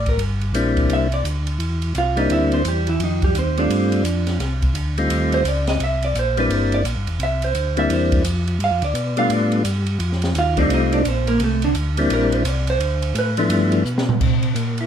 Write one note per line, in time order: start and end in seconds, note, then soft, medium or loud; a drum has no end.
0.00 0.18 A1 medium
0.06 0.20 A#4 medium
0.06 kick medium
0.06 ride soft
0.17 0.53 G1 medium
0.17 ride medium
0.41 ride soft
0.53 0.88 A#1 medium
0.53 1.07 G3 medium
0.53 1.07 A#3 medium
0.53 1.08 C4 medium
0.53 1.08 D4 medium
0.53 1.08 E4 medium
0.53 hi-hat pedal soft
0.53 ride medium
0.77 kick medium
0.77 ride soft
0.89 1.23 C2 medium
0.89 ride medium
0.93 1.13 E5 medium
1.12 1.21 D5 medium
1.12 ride soft
1.24 1.58 D2 medium
1.24 hi-hat pedal soft
1.24 ride medium
1.47 ride soft
1.59 1.93 E2 medium
1.59 ride medium
1.82 ride soft
1.95 2.29 C2 medium
1.95 2.18 F4 medium
1.95 2.18 F5 medium
1.95 hi-hat pedal soft
1.95 ride medium
2.16 2.62 G3 medium
2.16 2.62 A#3 medium
2.16 2.63 C4 medium
2.16 2.63 D4 medium
2.16 2.30 D#4 medium
2.16 2.63 E4 medium
2.16 2.31 D#5 medium
2.16 ride soft
2.29 2.64 D2 medium
2.29 2.53 E4 medium
2.29 2.53 E5 medium
2.29 ride medium
2.52 2.66 C4 medium
2.52 2.66 C5 medium
2.52 ride soft
2.65 2.99 E2 medium
2.65 2.88 G4 medium
2.65 hi-hat pedal medium
2.65 ride medium
2.69 2.89 G3 medium
2.87 3.01 E3 medium
2.87 3.01 E4 medium
2.87 ride soft
2.99 3.33 F2 medium
2.99 ride medium
3.03 3.24 D#3 medium
3.03 3.23 D#4 medium
3.22 3.36 G3 medium
3.22 3.36 G4 medium
3.22 kick medium
3.22 ride soft
3.34 3.69 D#2 medium
3.34 hi-hat pedal soft
3.34 ride medium
3.38 3.58 C4 medium
3.38 3.58 C5 medium
3.57 4.03 G3 medium
3.57 4.03 A3 medium
3.57 4.03 C4 medium
3.57 4.37 D4 medium
3.57 4.04 F4 medium
3.57 4.37 D5 medium
3.57 ride soft
3.70 4.04 G2 medium
3.70 ride medium
3.92 ride soft
4.04 4.39 F2 medium
4.04 hi-hat pedal medium
4.04 ride medium
4.27 snare soft
4.27 ride soft
4.39 4.74 C2 medium
4.39 snare soft
4.39 ride medium
4.62 kick medium
4.62 ride soft
4.74 5.09 D2 medium
4.74 hi-hat pedal medium
4.74 ride medium
4.98 5.43 G3 medium
4.98 5.43 A3 medium
4.98 5.43 C4 medium
4.98 5.44 D#4 medium
4.98 5.44 F4 medium
4.98 ride soft
5.10 5.44 D#2 medium
5.10 ride medium
5.32 5.46 C5 medium
5.32 ride soft
5.44 5.79 C#2 medium
5.44 5.68 D5 medium
5.44 hi-hat pedal medium
5.44 ride medium
5.67 5.81 D#5 medium
5.67 snare soft
5.67 ride soft
5.80 6.14 C2 medium
5.80 6.03 E5 medium
5.80 ride medium
6.02 6.16 D5 loud
6.02 ride soft
6.15 6.49 A#1 medium
6.15 hi-hat pedal medium
6.15 ride medium
6.19 6.39 C5 medium
6.37 6.83 G3 medium
6.37 6.83 A#3 medium
6.37 6.83 C4 medium
6.37 6.83 D4 medium
6.37 6.83 E4 medium
6.37 6.54 B4 medium
6.37 ride soft
6.49 6.84 G1 medium
6.49 ride medium
6.54 6.74 A#4 medium
6.72 6.82 D5 loud
6.72 ride soft
6.85 6.96 A#1 medium
6.85 hi-hat pedal soft
6.85 ride medium
6.96 7.08 G1 soft
7.07 7.19 E1 medium
7.07 ride soft
7.19 7.54 C2 medium
7.19 7.43 E5 medium
7.19 ride medium
7.42 7.76 C5 medium
7.42 ride soft
7.55 7.89 D2 medium
7.55 hi-hat pedal soft
7.55 ride medium
7.77 8.23 G3 medium
7.77 8.23 A#3 medium
7.77 8.23 C4 medium
7.77 8.23 D4 medium
7.77 8.23 E4 medium
7.77 7.91 E5 loud
7.77 ride soft
7.90 8.24 E2 medium
7.90 8.24 C5 medium
7.90 ride medium
8.12 kick medium
8.12 ride soft
8.24 8.59 F2 medium
8.24 hi-hat pedal medium
8.24 ride medium
8.47 ride soft
8.59 8.71 G2 medium
8.59 ride medium
8.64 8.84 F5 medium
8.71 8.83 F2 medium
8.82 8.94 D2 medium
8.82 9.16 D5 medium
8.82 ride soft
8.94 9.28 B2 medium
8.94 hi-hat pedal soft
8.94 ride medium
9.17 9.63 G3 medium
9.17 9.63 A3 medium
9.17 9.63 B3 medium
9.17 9.63 D4 medium
9.17 9.63 F4 medium
9.17 9.31 F5 medium
9.17 ride soft
9.29 9.64 A2 medium
9.29 ride medium
9.33 9.64 D5 medium
9.52 ride soft
9.64 9.99 G2 medium
9.64 hi-hat pedal medium
9.64 ride medium
9.86 ride soft
9.99 10.34 F2 medium
9.99 ride medium
10.12 snare soft
10.22 snare soft
10.22 ride soft
10.35 10.69 D#2 medium
10.35 10.58 F4 medium
10.35 hi-hat pedal soft
10.35 ride medium
10.39 10.58 F5 medium
10.57 11.03 G3 medium
10.57 11.03 A3 medium
10.57 11.03 C4 medium
10.57 10.71 D4 medium
10.57 11.03 D#4 medium
10.57 11.03 F4 medium
10.57 10.71 D5 medium
10.57 kick medium
10.57 ride soft
10.69 11.04 C2 medium
10.69 ride medium
10.74 10.94 D#4 medium
10.74 10.93 D#5 medium
10.92 11.06 D4 medium
10.92 11.06 D5 loud
10.92 ride soft
11.05 11.39 A#1 medium
11.05 11.29 C4 medium
11.05 11.28 C5 medium
11.05 hi-hat pedal medium
11.05 ride medium
11.27 11.41 A#3 medium
11.27 11.40 A#4 medium
11.27 ride soft
11.40 11.74 C2 medium
11.40 11.64 A3 medium
11.40 ride medium
11.44 11.63 A4 medium
11.62 11.71 D3 medium
11.62 11.71 D4 medium
11.62 ride soft
11.75 12.09 D2 medium
11.75 hi-hat pedal soft
11.75 ride medium
11.97 12.43 G3 medium
11.97 12.43 A#3 medium
11.97 12.43 C4 medium
11.97 12.44 D4 medium
11.97 12.44 E4 medium
11.97 ride medium
12.10 12.44 A#1 medium
12.10 12.35 A#4 medium
12.10 ride medium
12.32 12.49 C5 medium
12.32 ride soft
12.45 12.79 C2 medium
12.45 hi-hat pedal medium
12.45 ride medium
12.49 12.69 D5 medium
12.67 13.13 C5 medium
12.67 ride soft
12.79 13.14 D2 medium
12.79 ride medium
13.02 ride soft
13.15 13.49 A2 medium
13.15 13.31 B4 medium
13.15 hi-hat pedal soft
13.15 ride medium
13.37 13.83 F3 medium
13.37 13.83 A3 medium
13.37 13.83 B3 medium
13.37 13.84 D4 medium
13.37 13.84 E4 medium
13.37 ride medium
13.49 13.84 G2 medium
13.49 ride medium
13.72 ride soft
13.85 14.19 B2 medium
13.85 hi-hat pedal medium
13.98 snare medium
14.09 floor tom medium
14.20 14.55 C3 medium
14.20 kick medium
14.20 crash medium
14.43 ride soft
14.55 14.87 A#2 medium
14.55 hi-hat pedal soft
14.55 ride medium
14.78 14.87 E4 medium
14.78 ride soft